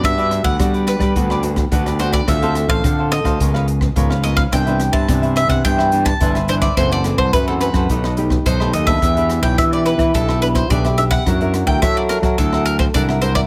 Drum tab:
HH |xxx-xxxxx-xxxxxx|xxx-x-xxx-x-x-x-|xxx-xxxxx-xxxxxx|xxx-x-xxx-x-x-x-|
SD |r-r-r-rr-r-r-r-r|r-r-r-rr-r-r-r-r|r-r-r-rr-r-r-r-r|r-r-r-rr-r-r-r-r|
BD |o--oo--oo--oo--o|o--oo--oo--oo--o|o--oo--oo--oo--o|o--oo--oo--oo--o|

HH |xxx-xxxxx-xxxxxx|xxx-x-xxx-x-x-x-|
SD |r-r-r-rr-r-r-r-r|r-r-r-rr-r-r-r-r|
BD |o--oo--oo--oo--o|o--oo--oo--oo--o|